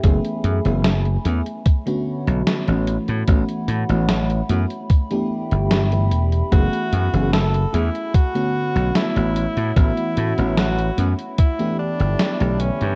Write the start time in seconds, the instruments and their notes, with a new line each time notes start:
Already playing: ambient pad E5
0.03 slap bass F#1, fm electric piano E3 A3 B3 C#4 G#4, ambient pad A3 G#5 B5, kick, closed hi-hat
0.25 closed hi-hat
0.44 slap bass F#2, closed hi-hat
0.64 slap bass F#1, fm electric piano E3 A3 B3 C#4 G#4, closed hi-hat
0.84 snare, closed hi-hat
1.05 closed hi-hat
1.24 slap bass E2, fm electric piano E3 A3 B3 C#4 G#4, closed hi-hat
1.46 closed hi-hat
1.65 ambient pad C#5, kick, closed hi-hat
1.86 fm electric piano D3 A3 B3 C#4 F#4, closed hi-hat
2.27 slap bass B1, closed hi-hat
2.47 snare, closed hi-hat
2.67 slap bass A1, fm electric piano E3 A3 B3 C#4 F#4, closed hi-hat
2.87 ambient pad F#5, closed hi-hat
3.08 slap bass A2, closed hi-hat
3.27 slap bass A1, fm electric piano E3 A3 B3 C#4 F#4, kick, closed hi-hat
3.49 closed hi-hat
3.68 slap bass A2, closed hi-hat
3.89 slap bass A1, fm electric piano E3 A3 B3 C#4 F#4, closed hi-hat
4.09 snare, closed hi-hat
4.30 closed hi-hat
4.49 slap bass F#2, fm electric piano E3 A3 B3 C#4 F#4, closed hi-hat
4.70 closed hi-hat
4.90 ambient pad E5 G5, kick, closed hi-hat
5.11 fm electric piano E3 A3 B3 D4 G4, closed hi-hat
5.51 slap bass G1, closed hi-hat
5.71 snare, closed hi-hat
5.91 fm electric piano E3 A3 B3 D4 G4, closed hi-hat
6.11 slap bass E1, closed hi-hat
6.32 closed hi-hat
6.51 slap bass F#1, fm electric piano E3 A3 B3 C#4 G#4, ambient pad A3 G#5, tenor saxophone F#4, kick, closed hi-hat
6.73 closed hi-hat
6.93 slap bass F#2, closed hi-hat
7.13 slap bass F#1, fm electric piano E3 A3 B3 C#4 G#4, closed hi-hat
7.33 tenor saxophone A4, snare, closed hi-hat
7.54 closed hi-hat
7.72 slap bass E2, fm electric piano E3 A3 B3 C#4 G#4, tenor saxophone E4, closed hi-hat
7.95 closed hi-hat
8.14 tenor saxophone F#4, ambient pad C#5, kick, closed hi-hat
8.34 fm electric piano D3 A3 B3 C#4 F#4, closed hi-hat
8.76 slap bass B1, closed hi-hat
8.95 tenor saxophone E4, snare, closed hi-hat
9.15 slap bass A1, fm electric piano E3 A3 B3 C#4 F#4, closed hi-hat
9.36 ambient pad F#5, closed hi-hat
9.57 slap bass A2, closed hi-hat
9.76 slap bass A1, fm electric piano E3 A3 B3 C#4 F#4, tenor saxophone E4, kick, closed hi-hat
9.97 closed hi-hat
10.17 slap bass A2, closed hi-hat
10.37 slap bass A1, fm electric piano E3 A3 B3 C#4 F#4, closed hi-hat
10.57 tenor saxophone F#4, snare, closed hi-hat
10.79 closed hi-hat
10.97 slap bass F#2, fm electric piano E3 A3 B3 C#4 F#4, closed hi-hat
11.19 closed hi-hat
11.38 tenor saxophone E4, ambient pad E5 G5 B5, kick, closed hi-hat
11.59 fm electric piano E3 A3 B3 D4 G4, closed hi-hat
11.79 tenor saxophone D4
12.00 slap bass G1, closed hi-hat
12.19 snare, closed hi-hat
12.40 slap bass B1, fm electric piano D3 E3 A3 B3 G4, closed hi-hat
12.60 tenor saxophone C#4, closed hi-hat
12.81 slap bass G2, closed hi-hat